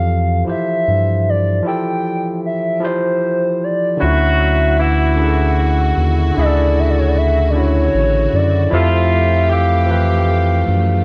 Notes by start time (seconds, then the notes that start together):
Already playing: F2 E3 F3 G4 A4 F5
0.45 G2 F3 E4 G4
0.49 C5 E5
0.88 G2
1.29 D5
1.63 F3 E4 G4
1.67 A4 G5
2.46 E5
2.80 F3 E4 G4
2.85 C5
3.64 D5
3.97 D3 F#3 C#4 E4 F#4
4.02 D2 F4 E5
4.09 F#4
4.78 E3 E4 F#5
5.16 D3 C#4 E4
5.21 G#4 F#5
5.28 A4
5.97 D#2
6.34 D2 C#3 D3 E4
6.39 G#4 D5
6.46 A4
6.80 E5
6.90 D5
6.99 C#5
7.08 D5
7.18 E5
7.50 D3 D5
7.54 C#4 E4 F#4 C#5
7.94 A1
8.33 F#2 D5
8.70 F2 F3 A3 E4 F4 G4 E5
8.75 A4
9.50 E3 G4 F5
9.86 E3 F3 G4
9.91 B4 F5
10.68 F#2